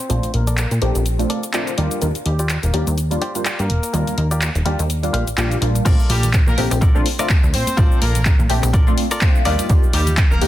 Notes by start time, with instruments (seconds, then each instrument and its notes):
Already playing: horn section C4 C5
0.00 muted clean electric guitar stroke
0.09 analog synth bass A#1, analog polysynth A3 C4 D4 F4, muted clean electric guitar stroke, closed hi-hat, shaker
0.23 muted clean electric guitar stroke, closed hi-hat, shaker
0.34 analog synth bass A#1, horn section A#3 A#4, closed hi-hat
0.47 clean electric guitar A4 A#4 D5, closed hi-hat, shaker
0.57 clap, closed hi-hat, shaker
0.71 analog synth bass A#2, closed hi-hat, shaker
0.81 analog synth bass A#1, analog polysynth A3 C4 D4 G4, clean electric guitar A4 A#4 D5, closed hi-hat
0.95 analog synth bass A#1, closed hi-hat, shaker
1.05 muted clean electric guitar stroke, closed hi-hat, shaker
1.19 analog polysynth A3 C4 D4 F4, closed hi-hat, shaker
1.30 clean electric guitar A4 A#4 D5, closed hi-hat
1.43 closed hi-hat, shaker
1.53 analog polysynth A3 C4 D4 F4, clean electric guitar A4 A#4 D5, clap, closed hi-hat, shaker
1.67 closed hi-hat, shaker
1.77 analog synth bass D#2, analog polysynth G3 A#3 D4 F4, clean electric guitar F4 G4 D5, closed hi-hat
1.91 closed hi-hat, shaker
2.01 analog synth bass D#2, analog polysynth G3 A#3 D4 F4, closed hi-hat, shaker
2.15 muted clean electric guitar stroke, closed hi-hat, shaker
2.26 analog synth bass D#2, horn section G3 G4, closed hi-hat
2.39 clean electric guitar F4 G4 D5, closed hi-hat, shaker
2.49 clap, closed hi-hat, shaker
2.63 analog synth bass D#1, horn section A#3 A#4, closed hi-hat, shaker
2.73 analog synth bass D#2, analog polysynth G3 A#3 D4 G4, clean electric guitar F4 G4 D5, closed hi-hat
2.87 analog synth bass D#2, closed hi-hat, shaker
2.98 muted clean electric guitar stroke, closed hi-hat, shaker
3.11 analog polysynth G3 A#3 D4 F4, closed hi-hat, shaker
3.21 horn section C4 C5, clean electric guitar F4 G4 D5, closed hi-hat
3.35 analog polysynth G3 A#3 D4 F4, horn section C4 C5, closed hi-hat, shaker
3.45 clean electric guitar F4 G4 D5, clap, closed hi-hat, shaker
3.59 analog synth bass G2, horn section A#3 A#4, closed hi-hat, shaker
3.70 analog synth bass D#1, closed hi-hat
3.83 muted clean electric guitar stroke, closed hi-hat, shaker
3.93 analog synth bass D#2, analog polysynth G3 A#3 D4 F4, muted clean electric guitar stroke, closed hi-hat, shaker
4.07 muted clean electric guitar stroke, closed hi-hat, shaker
4.18 analog synth bass D#2, closed hi-hat
4.31 horn section A#3 A#4, clean electric guitar F4 G4 D5, closed hi-hat, shaker
4.42 horn section A#3 A#4, clap, closed hi-hat, shaker
4.55 analog synth bass D#1, closed hi-hat, shaker
4.65 analog synth bass D#2, analog polysynth G3 A#3 D4 G4, clean electric guitar F4 G4 D5, closed hi-hat
4.79 analog synth bass D#2, closed hi-hat, shaker
4.89 muted clean electric guitar stroke, closed hi-hat, shaker
5.03 analog polysynth G3 A#3 D4 F4, closed hi-hat, shaker
5.13 analog synth bass A#1, clean electric guitar F4 G4 F5, closed hi-hat
5.27 analog synth bass A#1, closed hi-hat, shaker
5.37 analog synth bass A#1, analog polysynth G3 A#3 D4 F4, clean electric guitar F4 G4 D5, clap, closed hi-hat, shaker
5.51 closed hi-hat, shaker
5.61 analog synth bass A#1, analog polysynth G3 A#3 D4 F4, closed hi-hat
5.75 muted clean electric guitar stroke, closed hi-hat, shaker
5.85 analog synth bass A#1, analog polysynth A3 C4 D4 F4, clean electric guitar F4 A4 A#4 D5, kick, closed hi-hat, crash, tambourine, shaker
5.99 shaker
6.10 analog synth bass A#1, horn section G3 G4, open hi-hat, tambourine, high conga
6.23 closed hi-hat, tambourine, low conga, shaker
6.33 kick, clap, closed hi-hat, shaker
6.47 analog synth bass A#2, horn section A#3 A#4, low conga, shaker
6.57 analog synth bass A#1, analog polysynth A3 C4 D4 G4, open hi-hat, tambourine, high conga
6.71 analog synth bass A#1, muted clean electric guitar stroke, closed hi-hat, tambourine, shaker
6.81 clean electric guitar F4 A4 A#4 D5, kick, closed hi-hat, shaker
6.95 analog polysynth A3 C4 D4 F4, high conga, shaker
7.06 open hi-hat, tambourine
7.19 analog polysynth A3 C4 D4 F4, clean electric guitar F4 A4 A#4 D5, closed hi-hat, tambourine, shaker
7.29 kick, clap, closed hi-hat, tambourine, high conga, shaker
7.43 analog synth bass D2, shaker
7.54 analog synth bass A#2, horn section C4 C5, muted clean electric guitar stroke, open hi-hat, tambourine
7.67 closed hi-hat, tambourine, high conga, shaker
7.77 analog synth bass A#1, analog polysynth A3 C4 D4 F4, clean electric guitar F4 A4 A#4 D5, kick, closed hi-hat, tambourine, shaker
7.91 shaker
8.02 analog synth bass A#1, horn section A#3 A#4, open hi-hat, tambourine, high conga
8.15 closed hi-hat, tambourine, low conga, shaker
8.25 kick, clap, closed hi-hat, tambourine, shaker
8.39 analog synth bass A#2, low conga, shaker
8.49 analog synth bass A#1, analog polysynth A3 C4 D4 G4, open hi-hat, tambourine, high conga
8.63 analog synth bass A#1, muted clean electric guitar stroke, closed hi-hat, tambourine, shaker
8.73 clean electric guitar F4 A4 A#4 D5, kick, closed hi-hat, shaker
8.87 analog polysynth A3 C4 D4 F4, high conga, shaker
8.98 open hi-hat, tambourine
9.11 clean electric guitar F4 A4 A#4 D5, closed hi-hat, tambourine, shaker
9.21 analog polysynth A3 C4 D4 F4, kick, clap, closed hi-hat, tambourine, high conga, shaker
9.35 shaker
9.45 analog synth bass D#2, analog polysynth G3 A#3 D4 F4, clean electric guitar D#4 F4 G4 D5, open hi-hat, tambourine
9.59 closed hi-hat, tambourine, high conga, shaker
9.69 analog synth bass D#2, analog polysynth G3 A#3 D4 F4, kick, closed hi-hat, shaker
9.83 shaker
9.93 analog synth bass D#2, horn section G3 G4, open hi-hat, tambourine, high conga
10.07 closed hi-hat, tambourine, low conga, shaker
10.17 kick, clap, closed hi-hat, tambourine, shaker
10.31 analog synth bass D#1, horn section A#3 A#4, low conga, shaker
10.41 analog synth bass D#2, analog polysynth G3 A#3 D4 G4, open hi-hat, tambourine, high conga